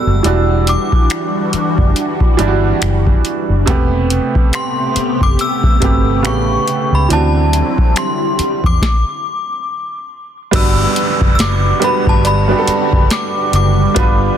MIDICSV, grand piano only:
0, 0, Header, 1, 2, 480
1, 0, Start_track
1, 0, Key_signature, 1, "major"
1, 0, Tempo, 857143
1, 138, Time_signature, 4, 2, 24, 8
1, 8049, End_track
2, 0, Start_track
2, 0, Title_t, "Grand piano"
2, 0, Program_c, 0, 0
2, 0, Control_c, 0, 64, 127
2, 0, Note_on_c, 0, 47, 69
2, 0, Note_on_c, 0, 55, 67
2, 0, Note_on_c, 0, 57, 65
2, 0, Note_on_c, 0, 64, 77
2, 128, Note_on_c, 0, 52, 74
2, 135, Note_off_c, 0, 55, 0
2, 135, Note_on_c, 0, 55, 67
2, 143, Note_on_c, 0, 62, 68
2, 145, Control_c, 0, 64, 0
2, 146, Note_off_c, 0, 57, 0
2, 150, Note_off_c, 0, 47, 0
2, 150, Note_off_c, 0, 64, 0
2, 151, Note_on_c, 0, 66, 83
2, 244, Control_c, 0, 64, 127
2, 801, Note_off_c, 0, 52, 0
2, 805, Note_off_c, 0, 55, 0
2, 809, Note_off_c, 0, 62, 0
2, 813, Note_off_c, 0, 66, 0
2, 1328, Note_on_c, 0, 52, 90
2, 1336, Note_on_c, 0, 55, 83
2, 1343, Note_on_c, 0, 62, 75
2, 1351, Note_on_c, 0, 64, 77
2, 1387, Note_off_c, 0, 64, 0
2, 1387, Note_on_c, 0, 66, 92
2, 1829, Note_off_c, 0, 52, 0
2, 1833, Note_off_c, 0, 55, 0
2, 1837, Note_off_c, 0, 62, 0
2, 1859, Note_off_c, 0, 66, 0
2, 2048, Note_on_c, 0, 48, 89
2, 2056, Note_on_c, 0, 57, 85
2, 2063, Note_on_c, 0, 59, 86
2, 2066, Control_c, 0, 64, 0
2, 2071, Note_on_c, 0, 67, 93
2, 2178, Control_c, 0, 64, 127
2, 2721, Note_off_c, 0, 48, 0
2, 2725, Note_off_c, 0, 57, 0
2, 2729, Note_off_c, 0, 59, 0
2, 2733, Note_off_c, 0, 67, 0
2, 3248, Note_on_c, 0, 48, 70
2, 3256, Note_on_c, 0, 57, 67
2, 3263, Note_on_c, 0, 59, 62
2, 3271, Note_on_c, 0, 67, 80
2, 3487, Note_off_c, 0, 57, 0
2, 3487, Note_on_c, 0, 49, 81
2, 3493, Note_off_c, 0, 48, 0
2, 3494, Note_off_c, 0, 59, 0
2, 3495, Note_on_c, 0, 57, 74
2, 3502, Note_off_c, 0, 67, 0
2, 3502, Note_on_c, 0, 59, 70
2, 3506, Control_c, 0, 64, 0
2, 3510, Note_on_c, 0, 67, 87
2, 3604, Control_c, 0, 64, 127
2, 3892, Note_off_c, 0, 49, 0
2, 3896, Note_off_c, 0, 57, 0
2, 3900, Note_off_c, 0, 59, 0
2, 3903, Note_off_c, 0, 67, 0
2, 3968, Note_on_c, 0, 52, 76
2, 3975, Note_on_c, 0, 60, 70
2, 3984, Note_on_c, 0, 62, 69
2, 3985, Control_c, 0, 64, 0
2, 3991, Note_on_c, 0, 66, 82
2, 4097, Control_c, 0, 64, 127
2, 4641, Note_off_c, 0, 52, 0
2, 4645, Note_off_c, 0, 60, 0
2, 4649, Note_off_c, 0, 62, 0
2, 4653, Note_off_c, 0, 66, 0
2, 4945, Control_c, 0, 64, 0
2, 5888, Note_on_c, 0, 55, 81
2, 5893, Note_on_c, 0, 59, 74
2, 5899, Note_on_c, 0, 62, 78
2, 5905, Note_on_c, 0, 66, 76
2, 5911, Note_on_c, 0, 71, 88
2, 5997, Control_c, 0, 64, 127
2, 6389, Note_off_c, 0, 55, 0
2, 6392, Note_off_c, 0, 59, 0
2, 6395, Note_off_c, 0, 62, 0
2, 6397, Note_off_c, 0, 66, 0
2, 6400, Note_off_c, 0, 71, 0
2, 6607, Note_on_c, 0, 55, 72
2, 6613, Note_on_c, 0, 59, 69
2, 6619, Note_on_c, 0, 62, 67
2, 6625, Note_on_c, 0, 66, 66
2, 6631, Note_on_c, 0, 71, 82
2, 6861, Note_off_c, 0, 55, 0
2, 6864, Note_off_c, 0, 59, 0
2, 6867, Note_off_c, 0, 62, 0
2, 6870, Note_off_c, 0, 66, 0
2, 6872, Note_off_c, 0, 71, 0
2, 6988, Note_on_c, 0, 55, 76
2, 6993, Note_on_c, 0, 59, 67
2, 6999, Note_on_c, 0, 62, 71
2, 7005, Note_on_c, 0, 66, 70
2, 7011, Note_on_c, 0, 67, 69
2, 7034, Note_off_c, 0, 67, 0
2, 7048, Note_on_c, 0, 69, 85
2, 7553, Note_off_c, 0, 55, 0
2, 7556, Note_off_c, 0, 59, 0
2, 7559, Note_off_c, 0, 62, 0
2, 7562, Note_off_c, 0, 66, 0
2, 7583, Note_off_c, 0, 69, 0
2, 7809, Note_on_c, 0, 55, 83
2, 7815, Note_on_c, 0, 59, 75
2, 7821, Note_on_c, 0, 62, 75
2, 7824, Control_c, 0, 64, 0
2, 7827, Note_on_c, 0, 65, 75
2, 7832, Note_on_c, 0, 71, 91
2, 7910, Control_c, 0, 64, 127
2, 8049, Note_off_c, 0, 55, 0
2, 8049, Note_off_c, 0, 59, 0
2, 8049, Note_off_c, 0, 62, 0
2, 8049, Note_off_c, 0, 65, 0
2, 8049, Note_off_c, 0, 71, 0
2, 8049, End_track
0, 0, End_of_file